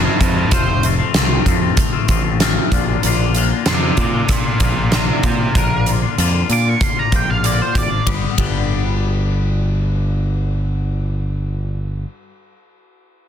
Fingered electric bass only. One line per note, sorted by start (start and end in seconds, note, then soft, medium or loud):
0.20 0.45 F2 medium
0.52 1.00 F1 medium
1.14 1.39 C2 medium
1.46 1.70 F2 medium
2.09 2.57 A1 medium
2.72 2.96 A#1 medium
3.04 3.52 A#1 medium
3.67 3.91 F2 medium
3.97 4.22 A#2 medium
4.61 5.09 A#1 medium
5.23 5.47 A#2 medium
5.55 6.03 A#1 medium
6.18 6.42 F2 medium
6.49 6.73 A#2 medium
7.12 7.60 A#1 medium
7.75 7.99 G#1 medium
8.06 8.24 G1 medium
8.38 12.04 G1 medium